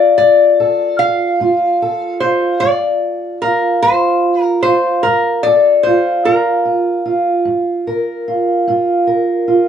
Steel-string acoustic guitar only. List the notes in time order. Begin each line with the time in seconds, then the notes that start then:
Already playing: F4 A4
0.18 G2
0.60 A4
1.00 F4
1.40 G2 F4
1.82 A4
2.22 F4
2.62 G2
3.43 F4
3.83 G2 F4
4.65 F4
5.05 G2
5.46 A4
5.87 F4
6.25 G2 F4
6.65 F4
7.06 F4
7.45 G2
7.87 A#4
8.28 F4
8.67 G2 F4
9.07 A#4
9.48 F4